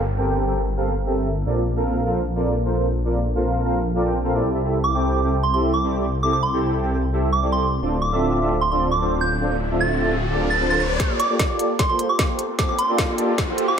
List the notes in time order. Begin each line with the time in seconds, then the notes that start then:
Already playing: G1, downlifter
0.17 C4 G4 A4 A#4 G5
0.47 C4 G4 A4 A#4 G5
0.77 C4 G4 A4 A#4 F5
1.06 C4 G4 A4 A#4 E5
1.46 A#1 C4 F4 A4 A#4 D5
1.76 C4 F4 A4 A#4 F5
2.06 C4 F4 A4 A#4 F5
2.36 C4 F4 A4 A#4 D5
2.65 C4 F4 A4 A#4 C5
3.05 C4 F4 A4 A#4 D5
3.35 C4 F4 A4 A#4 F5
3.65 C4 F4 A4 A#4 F5
3.95 C4 F4 A4 A#4 D5
4.04 C4 F4 A4 A#4 G5
4.24 C4 F4 A4 A#4 F5
4.34 C4 E4 G4 A4 D5
4.44 C2
4.54 C4 E4 G4 A4 E5
4.64 C4 E4 G4 A4 E5
4.84 D6
4.94 C4 E4 G4 A4 G5
5.23 C4 E4 G4 A4 G5
5.43 C6
5.54 C4 E4 G4 A4 E5 C6
5.74 D6
5.83 C4 E4 G4 A4 D5
6.23 C4 E4 G4 A4 E5 D6
6.33 D6
6.43 C6
6.53 C4 E4 G4 A4 G5
6.82 C4 E4 G4 A4 G5
7.13 C4 E4 G4 A4 E5
7.33 D6
7.42 C4 E4 G4 A4 D5
7.52 C6
7.82 D1 C4 D4 F4 A4 D5, riser
8.02 D6
8.12 C4 D4 F4 A4 E5
8.41 C4 D4 F4 A4 E5
8.61 C6
8.72 C4 D4 F4 A4 D5 C6
8.91 D6
9.01 C4 D4 F4 A4 C5
9.21 G6
9.41 C4 D4 F4 A4 D5
9.71 C4 D4 F4 A4 E5
9.81 A6
10.00 C4 D4 F4 A4 E5
10.30 C4 D4 F4 A4 D5
10.50 A6
10.60 C4 D4 F4 A4 C5
10.70 A6
10.80 A6
11.00 A#3 F4 G4 A4 C5, kick, snare, closed hi-hat, riser
11.20 D6, closed hi-hat
11.30 A#3 F4 G4 A4 D5
11.39 kick, snare, closed hi-hat
11.59 A#3 F4 G4 A4 D5, closed hi-hat
11.79 C6, kick, snare, closed hi-hat
11.89 A#3 F4 G4 A4 C5 C6
11.99 closed hi-hat
12.09 D6
12.19 A#3 F4 G4 A4 C5, kick, snare, closed hi-hat
12.39 closed hi-hat
12.59 A#3 F4 G4 A4 C5 D6, kick, snare, closed hi-hat
12.69 D6
12.78 C6, closed hi-hat
12.89 A#3 F4 G4 A4 D5
12.98 kick, snare, closed hi-hat
13.18 A#3 F4 G4 A4 D5, closed hi-hat
13.38 kick, snare, closed hi-hat
13.48 A#3 F4 G4 A4 C5
13.58 closed hi-hat
13.68 D6